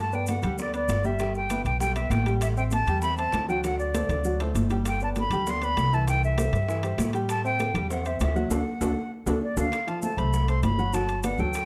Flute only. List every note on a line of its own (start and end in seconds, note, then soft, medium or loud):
0.00 0.16 A5 medium
0.14 0.28 G5 medium
0.29 0.57 F#5 medium
0.61 0.74 D5 medium
0.75 1.07 D5 medium
1.05 1.35 E5 medium
1.36 1.64 G5 medium
1.65 1.79 G5 medium
1.80 1.95 G5 loud
1.95 2.12 E5 medium
2.10 2.34 G5 medium
2.42 2.48 E5 medium
2.57 2.63 G5 medium
2.73 3.01 A5 loud
3.02 3.16 B5 loud
3.18 3.46 A5 loud
3.48 3.63 G5 medium
3.64 3.78 F#5 loud
3.79 4.39 D5 medium
4.87 5.01 G5 medium
5.03 5.09 A5 medium
5.19 5.51 B5 loud
5.50 5.66 C6 loud
5.64 5.95 B5 loud
5.94 6.08 A5 loud
6.08 6.22 G5 medium
6.24 7.11 E5 medium
7.30 7.43 A5 loud
7.45 7.87 G5 medium
7.91 8.08 F#5 medium
8.06 8.21 E5 medium
8.22 8.50 E5 medium
8.52 9.12 F#5 medium
9.42 9.56 D5 medium
9.59 9.90 F5 medium
9.88 10.02 A5 medium
10.02 10.19 A5 medium
10.18 10.50 B5 medium
10.48 10.63 C6 medium
10.64 10.95 B5 medium
10.94 11.22 A5 medium
11.23 11.41 F#5 medium
11.39 11.65 G5 loud